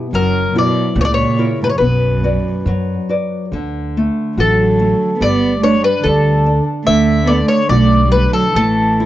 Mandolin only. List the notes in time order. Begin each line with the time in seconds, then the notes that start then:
0.15 A#4
0.58 D5
1.01 C#5 D5
1.14 C#5
1.64 B4
1.69 C#5
1.78 B4
4.40 A4
5.22 D5
5.63 C#5
5.84 B4
6.04 A4
6.87 E5
7.27 D5
7.48 C#5
7.69 D5
8.12 B4
8.33 A4
8.56 A4